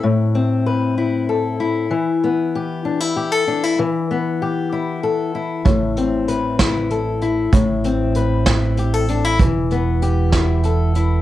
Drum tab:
HH |------|------|------|xxxxxx|
SD |------|------|------|---o--|
BD |------|------|------|o--o--|

HH |xxxxxx|xxxxxx|
SD |---o--|---o--|
BD |o--o--|o--o--|